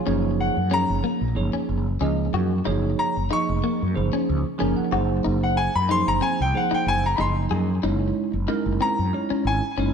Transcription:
0.06 F#1 F3 A#3 C#4 D#4 G#4 C#5
0.40 F#5
0.57 F#2
0.70 F3 A#3 C#4 D#4 G#4 C#5 A#5
0.90 F#1
1.04 A#3
1.21 A#1
1.35 F#1 F3 A#3 D#4 G#4 C#5
1.53 C#4
1.69 F#1
2.01 C#2 F3 A#3 C#4 D#4 G#4 D#5
2.33 F#2 F#4
2.65 F#1 F3 A#3 D#4 G#4 C#5
2.99 A#5
3.17 F#1
3.30 F3 A#3 D#4 G#4 D#5 C#6
3.49 F1
3.64 A#3
3.82 F#2
3.95 F#1 F3 A#3 D#4 G#4 C5
4.13 C#4
4.29 C#2
4.58 F#1 F3 A#3 C#4 D#4 G#4 A#4 G#5
4.77 F#5, muted fretless electric bass stroke
4.91 F#1 F#3 A#3 D#4 F#4 G#4 C5
5.24 F#1 D#4
5.43 F#5
5.57 G#5
5.75 F#2 B5
5.89 F3 A#3 D#4 G#4 C5 C6
6.08 F#1 A#5
6.21 C4 G#5
6.40 C2 G5
6.54 F3 A#3 D#4 G#4 C5 F#5
6.71 D#4 G5, muted fretless electric bass stroke
6.86 F#1 G#5
7.06 A#5
7.16 F#1 F3 A#3 D#4 G#4 B5
7.20 D#5 C6
7.50 F#2 G#4
7.83 F#1 G#3 C#4 D#4 E4 C#5
8.33 F#1
8.48 G#3 C#4 D#4 E4 A#4
8.66 F#1
8.81 C4 A#5
8.99 F#2
9.13 G#3 C#4 D#4 E4 C#5
9.30 C#4, muted fretless electric bass stroke
9.45 G#1 G#5
9.77 F#1 G#3 C#4 D#4 E4 C#5

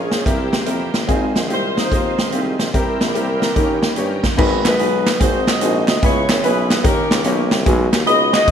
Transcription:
Already playing: A#1 F3 A#3 C#4 F4 G#4
0.11 C#4 F4 G#4 C5, snare, closed hi-hat
0.25 C2 C3 E3 A#3 C4 E4 G4 A#4, kick, closed hi-hat
0.53 C#2, snare, closed hi-hat
0.66 F2 C4 E4 G4 A#4, closed hi-hat
0.94 A1, snare, closed hi-hat
1.07 G#1 G#2 D#3 G#3 C4 D#4 F4 G#4, kick, closed hi-hat
1.36 A#1, snare, closed hi-hat
1.49 C2 C4 D#4 F4 G4 C5, closed hi-hat
1.77 C4 D#4 F4 A#4 C5, snare, closed hi-hat
1.91 D#2 C4 D#4 F4 A#4, kick, closed hi-hat
2.18 C#2, snare, closed hi-hat
2.32 C2 C4 D#4 F4 G4 G#4, closed hi-hat
2.59 A#1, snare, closed hi-hat
2.73 C2 C3 E3 A#3 C4 E4 G4 A#4, kick, closed hi-hat
3.01 A#1, snare, closed hi-hat
3.14 C2 C4 E4 G4 A#4, closed hi-hat
3.40 C4 E4 G4 A#4, snare, closed hi-hat
3.55 D#2 D#3 A#3 C#4 D#4 G4 A#4, kick, closed hi-hat
3.82 snare, closed hi-hat
3.96 G2 C#4 D#4 G4 C#5, closed hi-hat
4.23 kick, snare, closed hi-hat
4.37 G#1 G#2 B3 D#4 F#4 G#4 B4, kick, crash
4.65 A#1 D#4 F#4 B4, snare, clap, closed hi-hat
4.79 B1 B3 D#4 F#4 G#4 B4, closed hi-hat
5.06 snare, clap, closed hi-hat
5.20 G#1 G#2 C4 D#4 F#4 G#4 C5, kick, closed hi-hat
5.47 F#4 C5 D#5, snare, clap, closed hi-hat
5.61 A#1 C4 D#4 F#4 G#4 C5, closed hi-hat
5.88 D2 D#5, snare, clap, closed hi-hat
6.02 C#2 C#3 B3 C#4 E4 G#4 B4 C#5, kick, closed hi-hat
6.29 G#1 C#5, snare, clap, closed hi-hat
6.43 B1 B3 C#4 E4 G#4 B4, closed hi-hat
6.70 snare, clap, closed hi-hat
6.83 D#2 D#3 A#3 C#4 D#4 G4 A#4, kick, closed hi-hat
7.11 C#2, snare, clap, closed hi-hat
7.24 B1 A#3 C#4 D#4 G4 A#4 C#5, closed hi-hat
7.51 C2, snare, clap, closed hi-hat
7.65 B1 B2 G#3 B3 D#4 F#4 G#4, kick, closed hi-hat
7.93 D#2, snare, clap, closed hi-hat
8.06 C#2 G#3 B3 D#4 F#4 B4 D#5, closed hi-hat
8.33 F#4 G#4 D#5, snare, clap, closed hi-hat
8.48 B1 G#3 B3 D#4, kick, closed hi-hat

